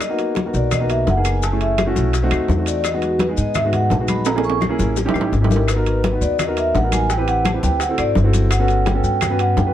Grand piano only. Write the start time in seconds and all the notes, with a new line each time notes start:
0.09 A#3 B3 D#4 F#4
0.45 A#3 B3 D#4 F#4
0.80 A#3 B3 D#4 F#4
1.16 A#3 B3 D#4 G#4
1.52 A3 C#4 E4 G#4
1.86 A3 C#4 E4 F#4
2.22 A3 C4 D#4 F#4
2.57 A3 C4 D#4 F#4
2.93 G#3 B3 D#4 F#4
3.28 G#3 B3 D#4 G#4
3.64 G#3 B3 D#4 F#4
3.99 G#3 B3 D#4 F#4
4.35 A#3 C#4 E4 G#4
4.69 A#3 C#4 E4 G#4
5.05 C#4 D#4 E4 G4
5.41 C#4 D#4 E4 G4
5.75 B3 D#4 F#4 A#4
6.12 B3 D#4 F#4 B4
6.47 B3 D#4 F#4 A#4
6.83 B3 D#4 F#4 A#4
7.17 C4 E4 G4 B4
7.54 C4 E4 G4 B4
7.89 C4 E4 F#4 A4
8.24 C4 E4 F#4 A4
8.59 B3 C#4 F#4 A4
8.94 B3 C#4 F#4 A4
9.30 B3 C#4 F#4 B4
9.65 B3 C#4 F#4 B4